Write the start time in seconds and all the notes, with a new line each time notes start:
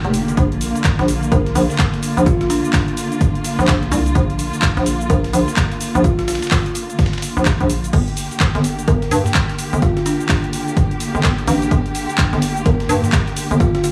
Already playing: D3 A#3 G4
0.05 F1, closed hi-hat
0.14 closed hi-hat, open hi-hat, cabasa
0.28 closed hi-hat, cabasa
0.37 A#1 F4, kick, closed hi-hat, cabasa
0.52 closed hi-hat
0.61 closed hi-hat, open hi-hat, cabasa
0.75 closed hi-hat, cabasa
0.84 kick, snare, clap, closed hi-hat, cabasa
0.99 A#1, snare, closed hi-hat
1.08 closed hi-hat, open hi-hat, cabasa
1.23 closed hi-hat, cabasa
1.32 A#1 A#4, kick, closed hi-hat, cabasa
1.46 snare, closed hi-hat
1.55 A#1, closed hi-hat, open hi-hat, cabasa
1.70 snare, cabasa
1.79 kick, snare, clap, closed hi-hat, cabasa
1.94 snare, closed hi-hat
2.03 closed hi-hat, open hi-hat, cabasa
2.17 A#1, closed hi-hat, cabasa
2.26 F4, kick, closed hi-hat, cabasa
2.41 F4, snare, closed hi-hat
2.50 D4, closed hi-hat, open hi-hat, cabasa
2.64 closed hi-hat, cabasa
2.73 kick, snare, clap, closed hi-hat, open hi-hat, cabasa
2.88 closed hi-hat
2.97 closed hi-hat, open hi-hat, cabasa
3.12 closed hi-hat, cabasa
3.21 kick, closed hi-hat, cabasa
3.35 closed hi-hat
3.44 snare, closed hi-hat, open hi-hat, cabasa
3.59 A#1, snare, cabasa
3.68 A#1, kick, snare, clap, closed hi-hat, cabasa
3.83 closed hi-hat
3.92 C2 D4, closed hi-hat, open hi-hat, cabasa
4.06 closed hi-hat, cabasa
4.15 A#1, kick, closed hi-hat, cabasa
4.30 closed hi-hat
4.39 closed hi-hat, open hi-hat, cabasa
4.53 closed hi-hat, cabasa
4.62 kick, snare, clap, closed hi-hat, cabasa
4.77 A#1, snare, closed hi-hat
4.86 closed hi-hat, open hi-hat, cabasa
5.01 closed hi-hat, cabasa
5.10 A#1 A#4, kick, closed hi-hat, cabasa
5.24 snare, closed hi-hat
5.33 A#1, closed hi-hat, open hi-hat, cabasa
5.48 snare, cabasa
5.57 kick, snare, clap, closed hi-hat, cabasa
5.72 snare, closed hi-hat
5.81 closed hi-hat, open hi-hat, cabasa
5.95 A#1, closed hi-hat, cabasa
6.04 F4, kick, closed hi-hat, cabasa
6.19 F4, snare, closed hi-hat
6.28 F4, snare, closed hi-hat, open hi-hat, cabasa
6.35 snare, closed hi-hat
6.42 snare, closed hi-hat, cabasa
6.47 snare, closed hi-hat
6.51 kick, snare, clap, open hi-hat, cabasa
6.66 closed hi-hat
6.75 closed hi-hat, open hi-hat, cabasa
6.90 closed hi-hat, cabasa
6.99 kick, snare, closed hi-hat, cabasa
7.06 snare, closed hi-hat
7.13 snare, closed hi-hat
7.18 snare, closed hi-hat
7.22 snare, closed hi-hat, open hi-hat, cabasa
7.37 A#1, snare, cabasa
7.45 kick, snare, clap, closed hi-hat, cabasa
7.60 A#1, kick, closed hi-hat
7.70 closed hi-hat, open hi-hat, cabasa
7.84 closed hi-hat, cabasa
7.93 G1 D3 A#3 G4, kick, closed hi-hat, crash, cabasa
8.08 closed hi-hat
8.17 closed hi-hat, open hi-hat, cabasa
8.31 closed hi-hat, cabasa
8.40 kick, snare, clap, closed hi-hat, cabasa
8.55 G1, snare, closed hi-hat
8.64 closed hi-hat, open hi-hat, cabasa
8.79 closed hi-hat, cabasa
8.88 G1 A#4, kick, closed hi-hat, cabasa
9.02 snare, closed hi-hat
9.11 G2, closed hi-hat, open hi-hat, cabasa
9.26 snare, cabasa
9.34 kick, snare, clap, closed hi-hat, cabasa
9.49 snare, closed hi-hat
9.59 closed hi-hat, open hi-hat, cabasa
9.73 G1, closed hi-hat, cabasa
9.82 F4, kick, closed hi-hat, cabasa
9.97 F4, snare, closed hi-hat
10.06 D4, closed hi-hat, open hi-hat, cabasa
10.20 closed hi-hat, cabasa
10.29 kick, snare, clap, closed hi-hat, open hi-hat, cabasa
10.44 closed hi-hat
10.53 closed hi-hat, open hi-hat, cabasa
10.68 closed hi-hat, cabasa
10.77 kick, closed hi-hat, cabasa
10.91 closed hi-hat
11.00 snare, closed hi-hat, open hi-hat, cabasa
11.15 G1, snare, cabasa
11.23 G1, kick, snare, clap, closed hi-hat, cabasa
11.38 closed hi-hat
11.48 A1 D4, closed hi-hat, open hi-hat, cabasa
11.62 closed hi-hat, cabasa
11.71 G1, kick, closed hi-hat, cabasa
11.86 closed hi-hat
11.95 closed hi-hat, open hi-hat, cabasa
12.09 closed hi-hat, cabasa
12.18 kick, snare, clap, closed hi-hat, cabasa
12.33 G1, snare, closed hi-hat
12.42 closed hi-hat, open hi-hat, cabasa
12.57 closed hi-hat, cabasa
12.66 G1 A#4, kick, closed hi-hat, cabasa
12.80 snare, closed hi-hat
12.89 G2, closed hi-hat, open hi-hat, cabasa
13.04 snare, cabasa
13.12 kick, snare, clap, closed hi-hat, cabasa
13.27 snare, closed hi-hat
13.36 closed hi-hat, open hi-hat, cabasa
13.51 G1, closed hi-hat, cabasa
13.60 F4, kick, closed hi-hat, cabasa
13.75 F4, snare, closed hi-hat
13.84 F4, closed hi-hat, open hi-hat, cabasa